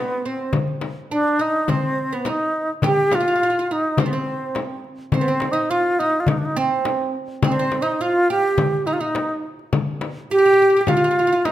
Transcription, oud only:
0.00 0.22 B3 medium
0.26 0.52 C4 medium
1.11 1.39 D4 medium
1.39 1.68 D#4 medium
1.69 2.13 C4 medium
2.13 2.27 B3 medium
2.26 2.66 D#4 medium
2.84 3.12 G4 medium
3.12 3.19 F4 medium
3.20 3.27 F4 medium
3.28 3.34 F4 medium
3.35 3.42 F4 soft
3.43 3.49 F4 medium
3.50 3.57 F4 medium
3.59 3.66 F4 medium
3.71 3.99 D#4 medium
4.00 4.06 C4 medium
4.06 4.13 B3 medium
4.13 4.81 C4 medium
5.14 5.21 C4 medium
5.21 5.28 B3 medium
5.28 5.53 C4 medium
5.53 5.70 D#4 medium
5.71 5.98 F4 medium
6.00 6.20 D#4 medium
6.56 7.10 C4 medium
7.44 7.51 C4 medium
7.52 7.58 D4 medium
7.59 7.82 C4 medium
7.82 8.00 D#4 medium
8.01 8.30 F4 medium
8.30 8.86 G4 medium
8.87 8.99 D#4 medium
9.01 9.41 D#4 medium
10.31 10.37 G4 medium
10.38 10.44 G4 medium
10.45 10.52 G4 medium
10.53 10.61 G4 medium
10.62 10.69 G4 medium
10.70 10.75 G4 medium
10.77 10.84 G4 medium
10.88 10.96 F4 medium
10.97 11.03 F4 medium
11.04 11.10 F4 medium
11.11 11.18 F4 medium
11.19 11.26 F4 medium
11.27 11.31 F4 medium
11.32 11.40 F4 medium
11.45 11.52 D#4 medium

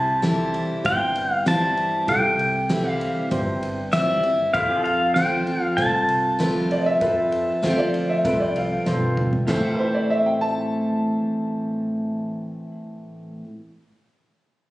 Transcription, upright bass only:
0.00 0.58 C2 loud
0.84 1.81 G1 medium
2.08 3.05 C2 medium
3.31 4.28 G1 medium
4.54 5.51 F2 medium
5.78 6.75 C2 medium
7.01 7.50 F2 medium
7.63 8.15 D2 medium
8.25 8.77 C2 medium
8.86 9.38 B1 medium
9.48 13.40 A1 medium

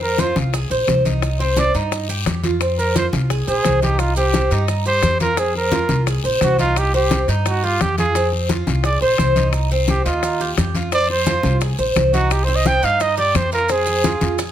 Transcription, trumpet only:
0.02 0.21 A#4 medium
0.20 0.37 C5 medium
1.39 1.60 C5 medium
1.58 1.75 D5 medium
2.78 2.94 A#4 medium
2.97 3.07 C5 medium
3.48 3.80 G#4 medium
3.83 4.01 G4 medium
3.99 4.15 F4 medium
4.16 4.65 G4 medium
4.87 5.19 C5 loud
5.21 5.40 A#4 medium
5.39 5.56 G#4 medium
5.57 6.04 A#4 medium
6.44 6.59 F#4 medium
6.59 6.80 F4 medium
6.78 6.95 G4 medium
6.95 7.27 G4 medium
7.48 7.66 F#4 medium
7.64 7.83 F4 medium
7.81 7.98 G4 medium
7.98 8.30 G#4 medium
8.85 9.01 D5 medium
9.02 9.50 C5 medium
9.89 10.04 G4 medium
10.05 10.54 F4 medium
10.93 11.09 D5 loud
11.10 11.58 C5 medium
12.13 12.33 F#4 medium
12.32 12.46 G4 medium
12.44 12.57 C5 medium
12.55 12.68 D#5 medium
12.67 12.86 G5 loud
12.84 13.03 F5 medium
13.02 13.17 D#5 medium
13.18 13.38 D5 loud
13.36 13.52 C5 medium
13.53 13.73 A#4 loud
13.72 14.40 G#4 medium

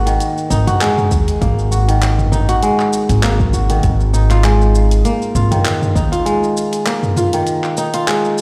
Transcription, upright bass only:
0.00 0.16 G#1 loud
0.51 0.64 G#1 medium
1.11 1.25 D#2 medium
1.42 2.59 G#1 loud
3.09 3.80 G#1 loud
3.84 5.01 G#1 loud
5.35 5.49 G#1 medium
5.96 6.10 D#2 medium

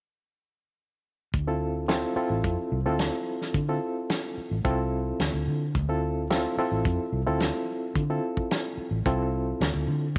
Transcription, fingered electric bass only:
1.34 2.04 D2 medium
2.16 muted fingered electric bass stroke soft
2.30 2.42 A1 medium
2.44 2.56 F2 medium
2.72 2.83 C2 medium
2.86 3.09 D2 medium
3.54 3.77 D3 medium
4.37 muted fingered electric bass stroke soft
4.51 4.63 A1 medium
4.65 5.11 C2 medium
5.20 5.31 D2 medium
5.34 5.45 D2 medium
5.47 5.76 D3 medium
5.75 6.45 D2 medium
6.57 muted fingered electric bass stroke soft
6.72 6.83 A1 medium
6.85 6.97 F2 medium
7.12 7.24 C2 medium
7.27 7.50 D2 medium
7.95 8.19 D3 medium
8.77 muted fingered electric bass stroke soft
8.91 9.03 A1 medium
9.06 9.52 C2 medium
9.61 9.72 D2 medium
9.75 9.86 D2 medium
9.88 10.18 D3 medium

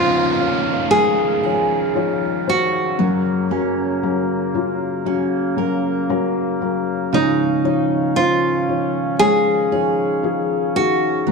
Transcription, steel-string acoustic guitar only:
0.00 2.99 C#3 medium
0.00 3.10 D#4 soft
0.92 2.98 G#3 soft
1.43 3.10 G#4 medium
2.99 7.13 F#3 medium
3.51 5.06 C#4 soft
5.06 7.65 C#4 soft
5.58 7.24 A#4 soft
7.13 11.27 C#3 medium
7.65 11.32 D#4 soft
9.20 11.26 G#3 medium
9.72 11.32 G#4 soft
11.27 11.32 F#3 medium

